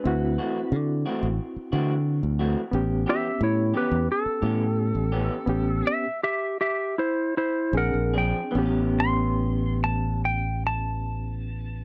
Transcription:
<<
  \new Staff \with { instrumentName = "Electric slide guitar" } { \time 4/4 \key a \mixolydian \tempo 4 = 84 << { r1 | r8 g'8 e'8 g'8 r2 | r8 <g' e''>8 <g' e''>8 <g' e''>8 <e' c''>8 <e' c''>8 bes'8 r8 | r8 c'''4 a''8 g''8 a''4. | } \\ { b'4 r2. | r8 e''8 cis''8 b'8 a'2~ | a'4 r2 fis''8 g''8 | r1 | } >> }
  \new Staff \with { instrumentName = "Reed electric piano" } { \time 4/4 \key a \mixolydian <c' e' fis'>1 | <b cis' g'>2~ <b cis' g'>8 <b cis' g'>4. | <b cis' g'>4 r2 <c' d' aes'>4 | <b cis' g'>1 | }
  \new Staff \with { instrumentName = "Clean electric guitar" } { \time 4/4 \key a \mixolydian r8 <e a c' fis'>8 r8 <e a c' fis'>8 r8 <e a c' fis'>8 r8 <e a c' fis'>8 | r8 <e b cis' g'>8 r8 <e b cis' g'>8 r8 <e b cis' g'>8 r8 <e b cis' g'>8 | r2. r8 <f c' d' aes'>8 | <e b cis' g'>1 | }
  \new Staff \with { instrumentName = "Fingered electric bass" } { \clef bass \time 4/4 \key a \mixolydian d,8 r8 d8 r16 a,,16 r8 d8. d,8 r16 | a,,8 r8 a,8 r16 e,16 r8 a,8. a,,8 r16 | a,,8 r2 r8 bes,,16 bes,,8 r16 | a,,1 | }
>>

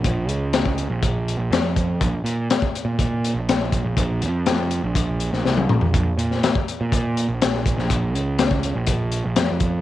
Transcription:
<<
  \new Staff \with { instrumentName = "Picked electric bass" } { \clef bass \time 4/4 \key bes \minor \tempo 4 = 122 bes,,8 des,4~ des,16 bes,,4 bes,,16 f,16 f,8. | bes,,16 r16 bes,8 r8. bes,4 bes,,4 bes,,16 | bes,,8 f,4~ f,16 bes,,4 bes,,16 c,8 bes,,8 | bes,,16 r16 bes,8 r8. bes,4 bes,,4 bes,,16 |
bes,,8 des,4~ des,16 bes,,4 bes,,16 f,16 f,8. | }
  \new DrumStaff \with { instrumentName = "Drums" } \drummode { \time 4/4 <hh bd>8 hh8 <hh sn>16 bd16 hh8 <hh bd>8 hh8 <hh sn>8 <hh bd>8 | <hh bd>8 hh8 <hh sn>16 bd16 hh8 <hh bd>8 hh8 <hh sn>8 <hh bd>8 | <hh bd>8 hh8 <hh sn>8 hh8 <hh bd>8 hh16 sn16 sn16 tommh16 toml16 tomfh16 | <hh bd>8 hh16 sn16 <hh sn>16 bd16 hh8 <hh bd>8 hh8 <hh sn>16 sn16 <hh bd>16 sn16 |
<hh bd>8 hh8 <hh sn>16 bd16 hh8 <hh bd>8 hh8 <hh sn>8 <hh bd>8 | }
>>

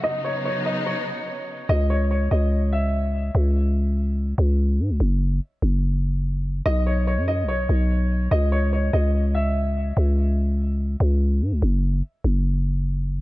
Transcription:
<<
  \new Staff \with { instrumentName = "Grand piano" } { \time 4/4 \key b \mixolydian \tempo 4 = 145 dis''8 cis''8 cis''8 dis''8 cis''2 | dis''8 cis''8 cis''8 dis''8 r8 e''4. | r1 | r1 |
dis''8 cis''8 cis''8 dis''8 cis''2 | dis''8 cis''8 cis''8 dis''8 r8 e''4. | r1 | r1 | }
  \new Staff \with { instrumentName = "String section" } { \clef bass \time 4/4 \key b \mixolydian <cis fis b dis'>1 | r1 | r1 | r1 |
r1 | r1 | r1 | r1 | }
  \new Staff \with { instrumentName = "808-style bass" } { \clef bass \time 4/4 \key b \mixolydian r1 | cis,4. cis,2~ cis,8 | cis,2~ cis,8 cis,4 gis,16 cis,16 | fis,,4 r8 fis,,2~ fis,,8 |
b,,4~ b,,16 fis,8~ fis,32 b,,8~ b,,32 b,,4. | cis,4. cis,2~ cis,8 | cis,2~ cis,8 cis,4 gis,16 cis,16 | fis,,4 r8 fis,,2~ fis,,8 | }
>>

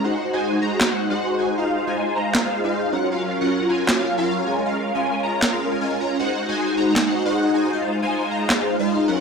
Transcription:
<<
  \new Staff \with { instrumentName = "Analog polysynth" } { \time 4/4 \key f \phrygian \tempo 4 = 156 <aes ees' ges' c'' ges''>8. <aes ees' ges' c'' aes''>8. <aes ees' ges' c'' bes''>8. <aes ees' ges' c'' ges''>8 <aes ees' ges' c'' ges''>8. <aes ees' ges' c'' aes''>8 | <aes ees' f' c'' f''>8. <aes ees' f' c'' aes''>8. <aes ees' f' c'' bes''>8. <aes ees' f' c'' f''>8 <aes ees' f' c'' f''>8. <ges des' f' bes' ges''>8 | <ges des' f' bes' f''>8. <ges des' f' bes' ges''>8. <ges des' f' bes' aes''>8. <ges des' f' bes' f''>8 <ges des' f' bes' f''>8. <aes des' f' bes' aes''>8 | <aes des' f' bes' f''>8. <aes des' f' bes' aes''>8. <aes des' f' bes' bes''>8. <aes des' f' bes' f''>8 <aes des' f' bes' aes''>16 <aes des' f' bes' aes''>8 <aes des' f' bes' bes''>8 |
<aes ees' ges' c'' ges''>8. <aes ees' ges' c'' aes''>8. <aes ees' ges' c'' bes''>8. <aes ees' ges' c'' ges''>8 <aes ees' ges' c'' ges''>8. <aes ees' ges' c'' aes''>8 | <aes ees' f' c'' f''>8. <aes ees' f' c'' aes''>8. <aes ees' f' c'' bes''>8. <aes ees' f' c'' f''>8 <aes ees' f' c'' f''>8. <ges des' f' bes' ges''>8 | }
  \new DrumStaff \with { instrumentName = "Drums" } \drummode { \time 4/4 r4 r4 <hc sn>4 r4 | r4 r4 <hc sn>4 r4 | r4 r4 <hc sn>4 r4 | r4 r4 <hc sn>4 r4 |
r4 r4 <hc sn>4 r4 | r4 r4 <hc sn>4 r4 | }
>>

